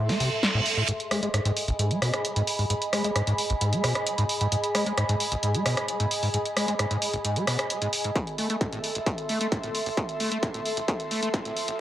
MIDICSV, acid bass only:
0, 0, Header, 1, 2, 480
1, 0, Start_track
1, 0, Tempo, 454545
1, 935, Time_signature, 4, 2, 24, 8
1, 12463, End_track
2, 0, Start_track
2, 0, Title_t, "Acid bass"
2, 0, Program_c, 0, 38
2, 0, Note_on_c, 0, 45, 84
2, 98, Note_on_c, 0, 57, 73
2, 114, Note_off_c, 0, 45, 0
2, 195, Note_off_c, 0, 57, 0
2, 214, Note_on_c, 0, 48, 78
2, 315, Note_off_c, 0, 48, 0
2, 576, Note_on_c, 0, 45, 99
2, 641, Note_off_c, 0, 45, 0
2, 816, Note_on_c, 0, 45, 78
2, 881, Note_off_c, 0, 45, 0
2, 934, Note_on_c, 0, 44, 81
2, 975, Note_off_c, 0, 44, 0
2, 1174, Note_on_c, 0, 56, 75
2, 1275, Note_off_c, 0, 56, 0
2, 1296, Note_on_c, 0, 56, 79
2, 1361, Note_off_c, 0, 56, 0
2, 1414, Note_on_c, 0, 44, 83
2, 1482, Note_off_c, 0, 44, 0
2, 1536, Note_on_c, 0, 44, 99
2, 1602, Note_off_c, 0, 44, 0
2, 1776, Note_on_c, 0, 32, 105
2, 1815, Note_off_c, 0, 32, 0
2, 1894, Note_on_c, 0, 44, 87
2, 2016, Note_on_c, 0, 56, 75
2, 2032, Note_off_c, 0, 44, 0
2, 2114, Note_off_c, 0, 56, 0
2, 2133, Note_on_c, 0, 47, 76
2, 2235, Note_off_c, 0, 47, 0
2, 2497, Note_on_c, 0, 44, 104
2, 2562, Note_off_c, 0, 44, 0
2, 2736, Note_on_c, 0, 44, 75
2, 2801, Note_off_c, 0, 44, 0
2, 2854, Note_on_c, 0, 44, 79
2, 2894, Note_off_c, 0, 44, 0
2, 3094, Note_on_c, 0, 56, 76
2, 3195, Note_off_c, 0, 56, 0
2, 3215, Note_on_c, 0, 56, 76
2, 3281, Note_off_c, 0, 56, 0
2, 3333, Note_on_c, 0, 44, 84
2, 3401, Note_off_c, 0, 44, 0
2, 3457, Note_on_c, 0, 44, 101
2, 3522, Note_off_c, 0, 44, 0
2, 3696, Note_on_c, 0, 32, 104
2, 3735, Note_off_c, 0, 32, 0
2, 3815, Note_on_c, 0, 44, 87
2, 3937, Note_on_c, 0, 56, 76
2, 3953, Note_off_c, 0, 44, 0
2, 4034, Note_off_c, 0, 56, 0
2, 4055, Note_on_c, 0, 47, 77
2, 4156, Note_off_c, 0, 47, 0
2, 4417, Note_on_c, 0, 44, 104
2, 4482, Note_off_c, 0, 44, 0
2, 4657, Note_on_c, 0, 44, 76
2, 4722, Note_off_c, 0, 44, 0
2, 4774, Note_on_c, 0, 44, 81
2, 4815, Note_off_c, 0, 44, 0
2, 5014, Note_on_c, 0, 56, 75
2, 5115, Note_off_c, 0, 56, 0
2, 5135, Note_on_c, 0, 56, 75
2, 5201, Note_off_c, 0, 56, 0
2, 5254, Note_on_c, 0, 44, 84
2, 5322, Note_off_c, 0, 44, 0
2, 5376, Note_on_c, 0, 44, 103
2, 5441, Note_off_c, 0, 44, 0
2, 5616, Note_on_c, 0, 32, 102
2, 5655, Note_off_c, 0, 32, 0
2, 5735, Note_on_c, 0, 44, 83
2, 5857, Note_on_c, 0, 56, 77
2, 5873, Note_off_c, 0, 44, 0
2, 5954, Note_off_c, 0, 56, 0
2, 5974, Note_on_c, 0, 47, 78
2, 6075, Note_off_c, 0, 47, 0
2, 6336, Note_on_c, 0, 44, 103
2, 6401, Note_off_c, 0, 44, 0
2, 6576, Note_on_c, 0, 44, 78
2, 6641, Note_off_c, 0, 44, 0
2, 6693, Note_on_c, 0, 44, 80
2, 6734, Note_off_c, 0, 44, 0
2, 6934, Note_on_c, 0, 56, 77
2, 7035, Note_off_c, 0, 56, 0
2, 7056, Note_on_c, 0, 56, 77
2, 7121, Note_off_c, 0, 56, 0
2, 7174, Note_on_c, 0, 44, 83
2, 7242, Note_off_c, 0, 44, 0
2, 7295, Note_on_c, 0, 44, 106
2, 7361, Note_off_c, 0, 44, 0
2, 7536, Note_on_c, 0, 32, 103
2, 7575, Note_off_c, 0, 32, 0
2, 7654, Note_on_c, 0, 44, 85
2, 7775, Note_on_c, 0, 56, 78
2, 7791, Note_off_c, 0, 44, 0
2, 7873, Note_off_c, 0, 56, 0
2, 7894, Note_on_c, 0, 47, 78
2, 7995, Note_off_c, 0, 47, 0
2, 8256, Note_on_c, 0, 44, 104
2, 8321, Note_off_c, 0, 44, 0
2, 8496, Note_on_c, 0, 44, 76
2, 8562, Note_off_c, 0, 44, 0
2, 8615, Note_on_c, 0, 45, 74
2, 8655, Note_off_c, 0, 45, 0
2, 8854, Note_on_c, 0, 57, 72
2, 8955, Note_off_c, 0, 57, 0
2, 8976, Note_on_c, 0, 57, 68
2, 9041, Note_off_c, 0, 57, 0
2, 9094, Note_on_c, 0, 45, 78
2, 9162, Note_off_c, 0, 45, 0
2, 9217, Note_on_c, 0, 45, 92
2, 9282, Note_off_c, 0, 45, 0
2, 9457, Note_on_c, 0, 33, 99
2, 9496, Note_off_c, 0, 33, 0
2, 9575, Note_on_c, 0, 45, 77
2, 9615, Note_off_c, 0, 45, 0
2, 9815, Note_on_c, 0, 57, 74
2, 9916, Note_off_c, 0, 57, 0
2, 9937, Note_on_c, 0, 57, 73
2, 10002, Note_off_c, 0, 57, 0
2, 10055, Note_on_c, 0, 45, 81
2, 10122, Note_off_c, 0, 45, 0
2, 10177, Note_on_c, 0, 45, 100
2, 10242, Note_off_c, 0, 45, 0
2, 10416, Note_on_c, 0, 33, 95
2, 10456, Note_off_c, 0, 33, 0
2, 10533, Note_on_c, 0, 45, 80
2, 10574, Note_off_c, 0, 45, 0
2, 10774, Note_on_c, 0, 57, 73
2, 10875, Note_off_c, 0, 57, 0
2, 10897, Note_on_c, 0, 57, 71
2, 10962, Note_off_c, 0, 57, 0
2, 11014, Note_on_c, 0, 45, 80
2, 11082, Note_off_c, 0, 45, 0
2, 11136, Note_on_c, 0, 45, 99
2, 11202, Note_off_c, 0, 45, 0
2, 11377, Note_on_c, 0, 33, 99
2, 11416, Note_off_c, 0, 33, 0
2, 11495, Note_on_c, 0, 45, 84
2, 11535, Note_off_c, 0, 45, 0
2, 11734, Note_on_c, 0, 57, 79
2, 11835, Note_off_c, 0, 57, 0
2, 11856, Note_on_c, 0, 57, 75
2, 11921, Note_off_c, 0, 57, 0
2, 11974, Note_on_c, 0, 45, 77
2, 12042, Note_off_c, 0, 45, 0
2, 12096, Note_on_c, 0, 45, 103
2, 12161, Note_off_c, 0, 45, 0
2, 12335, Note_on_c, 0, 33, 96
2, 12375, Note_off_c, 0, 33, 0
2, 12463, End_track
0, 0, End_of_file